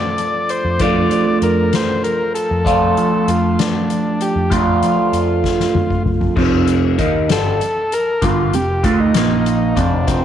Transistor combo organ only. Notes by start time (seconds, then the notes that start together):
Already playing: D5
0.50 C5
0.81 D5
1.43 A#4
1.75 C5
2.04 A#4
2.35 A4
3.29 F4
3.59 D4
4.22 G4
4.53 F4
7.32 A4
7.93 A#4
8.24 F4
8.55 G4
8.84 F4
9.00 D#4
9.77 D4
10.07 C4